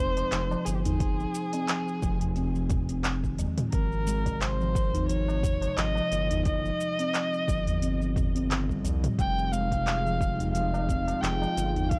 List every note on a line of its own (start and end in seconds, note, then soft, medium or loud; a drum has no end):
0.00 0.24 F1 medium
0.00 0.31 C4 medium
0.00 0.66 C5 loud
0.17 closed hi-hat soft
0.17 tabla na medium
0.17 shaker soft
0.32 0.55 F1 loud
0.32 0.43 F3 medium
0.32 clap loud
0.32 closed hi-hat medium
0.32 shaker soft
0.51 0.83 F3 loud
0.51 tabla na medium
0.51 shaker soft
0.65 1.26 G1 loud
0.65 0.76 G#4 medium
0.65 closed hi-hat soft
0.65 shaker medium
0.75 0.81 G4 medium
0.80 2.70 G#4 loud
0.85 1.00 D#4 medium
0.85 closed hi-hat medium
0.85 tabla ge medium
0.85 shaker soft
1.00 kick loud
1.00 closed hi-hat medium
1.00 shaker soft
1.20 1.34 F3 medium
1.20 shaker soft
1.35 shaker medium
1.53 1.68 C4 medium
1.53 closed hi-hat soft
1.53 tabla tin medium
1.53 shaker soft
1.68 1.80 F3 medium
1.68 clap loud
1.68 closed hi-hat medium
1.68 shaker soft
1.88 shaker soft
2.02 3.47 F1 medium
2.02 2.35 F3 loud
2.02 kick loud
2.02 shaker medium
2.21 closed hi-hat soft
2.21 tabla ge loud
2.21 shaker soft
2.36 2.54 C4 medium
2.36 closed hi-hat medium
2.36 tabla tin medium
2.36 shaker soft
2.56 2.70 F3 medium
2.56 shaker soft
2.70 kick loud
2.70 closed hi-hat soft
2.70 mid tom medium
2.70 tabla ge medium
2.70 shaker medium
2.89 3.04 C4 medium
2.89 closed hi-hat soft
2.89 shaker soft
3.04 clap loud
3.04 closed hi-hat medium
3.04 shaker soft
3.24 3.38 D#3 loud
3.24 kick medium
3.24 shaker soft
3.38 3.57 G#3 medium
3.38 closed hi-hat soft
3.38 tabla tin medium
3.38 tabla ge medium
3.38 shaker medium
3.58 closed hi-hat medium
3.58 mid tom medium
3.58 shaker soft
3.72 5.69 G#1 medium
3.72 3.91 F3 medium
3.72 4.42 A#4 loud
3.72 kick loud
3.72 closed hi-hat medium
3.72 shaker soft
3.92 shaker soft
4.07 4.25 G#3 loud
4.07 shaker medium
4.26 4.41 C3 medium
4.26 kick medium
4.26 closed hi-hat soft
4.26 tabla tin medium
4.26 shaker soft
4.41 5.08 C5 loud
4.41 clap loud
4.41 closed hi-hat medium
4.41 shaker soft
4.60 4.92 F3 loud
4.60 shaker soft
4.75 kick loud
4.75 shaker medium
4.93 5.09 D#4 medium
4.93 closed hi-hat soft
4.93 tabla ge medium
4.93 shaker soft
5.08 5.28 F3 medium
5.08 5.78 C#5 loud
5.08 closed hi-hat medium
5.08 shaker soft
5.28 tabla na medium
5.28 tabla tin medium
5.28 shaker soft
5.43 5.76 C3 medium
5.43 kick loud
5.43 closed hi-hat soft
5.43 tabla tin soft
5.43 tabla ge medium
5.43 shaker medium
5.62 closed hi-hat soft
5.62 tabla na medium
5.62 shaker soft
5.77 6.01 G#1 loud
5.77 5.89 F3 medium
5.77 6.45 D#5 loud
5.77 clap loud
5.77 closed hi-hat medium
5.77 shaker soft
5.95 6.29 F3 medium
5.95 tabla na medium
5.95 shaker soft
6.12 6.71 G1 medium
6.12 closed hi-hat soft
6.12 shaker medium
6.30 6.45 D#4 medium
6.30 closed hi-hat medium
6.30 tabla ge medium
6.30 shaker soft
6.45 8.46 D#5 loud
6.45 kick loud
6.45 closed hi-hat medium
6.45 shaker soft
6.65 6.79 F3 medium
6.65 shaker soft
6.80 shaker medium
6.99 7.13 C4 medium
6.99 closed hi-hat soft
6.99 tabla tin medium
6.99 shaker soft
7.14 7.25 F3 medium
7.14 clap loud
7.14 closed hi-hat medium
7.14 shaker soft
7.34 shaker soft
7.48 8.86 G1 medium
7.48 7.81 F3 loud
7.48 kick loud
7.48 shaker medium
7.67 closed hi-hat soft
7.67 tabla ge medium
7.67 shaker soft
7.82 7.99 C4 medium
7.82 closed hi-hat medium
7.82 tabla tin medium
7.82 shaker soft
8.02 8.16 F3 medium
8.02 shaker soft
8.16 kick loud
8.16 closed hi-hat soft
8.16 mid tom medium
8.16 tabla tin soft
8.16 tabla ge medium
8.16 shaker medium
8.35 8.50 C4 loud
8.35 closed hi-hat soft
8.35 shaker soft
8.50 8.68 D#3 medium
8.50 clap loud
8.50 closed hi-hat medium
8.50 shaker soft
8.69 8.83 G3 loud
8.69 kick medium
8.69 shaker soft
8.83 9.07 C2 medium
8.83 9.02 F3 medium
8.83 closed hi-hat soft
8.83 tabla tin medium
8.83 tabla ge medium
8.83 shaker medium
9.04 closed hi-hat medium
9.04 mid tom medium
9.04 shaker soft
9.18 11.14 F1 medium
9.18 9.37 F3 medium
9.18 11.99 G#3 medium
9.18 9.54 G5 loud
9.18 kick loud
9.18 closed hi-hat medium
9.18 shaker soft
9.26 11.99 F4 medium
9.38 shaker soft
9.49 11.99 D#4 medium
9.49 10.52 F5 loud
9.49 shaker medium
9.53 9.71 G#3 loud
9.66 11.99 G#4 medium
9.70 9.86 C3 medium
9.70 kick medium
9.70 closed hi-hat soft
9.70 tabla tin medium
9.70 shaker soft
9.87 clap loud
9.87 closed hi-hat medium
9.87 shaker soft
10.06 10.38 F3 loud
10.06 11.99 D#5 medium
10.06 shaker soft
10.21 kick loud
10.21 shaker medium
10.39 10.55 D#4 medium
10.39 closed hi-hat soft
10.39 tabla ge medium
10.39 shaker soft
10.53 10.73 F3 medium
10.53 11.23 F5 loud
10.53 closed hi-hat medium
10.53 shaker soft
10.73 tabla na medium
10.73 tabla tin medium
10.73 shaker soft
10.89 11.22 C4 medium
10.89 kick loud
10.89 closed hi-hat soft
10.89 tabla tin soft
10.89 tabla ge medium
10.89 shaker medium
11.08 closed hi-hat soft
11.08 tabla na medium
11.08 shaker soft
11.21 11.46 F1 loud
11.21 11.34 F3 medium
11.21 11.91 G5 loud
11.21 clap loud
11.21 closed hi-hat medium
11.21 shaker soft
11.42 11.74 F3 loud
11.42 tabla na medium
11.42 shaker soft
11.57 11.99 G1 medium
11.57 closed hi-hat soft
11.57 shaker medium
11.75 11.91 D#4 medium
11.75 closed hi-hat medium
11.75 tabla ge medium
11.75 shaker soft
11.89 11.99 F5 loud
11.89 kick loud
11.89 closed hi-hat medium
11.89 shaker soft